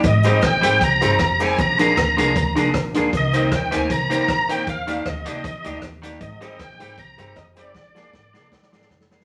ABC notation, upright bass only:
X:1
M:4/4
L:1/8
Q:"Swing" 1/4=156
K:Cm
V:1 name="Upright bass" clef=bass
A,,,2 B,,, A,,, C,, G,,, F,,,2 | B,,,2 D,, C,, D,, C,, B,,, D,, | C,,2 E,, D,, C,,2 B,,,2 | E,,2 D,, C,, B,,, D,, E,,2 |
A,,,2 B,,, A,,, C,, G,,, F,,,2 | B,,,2 A,,, C,, B,,, A,,, F,,,2 |]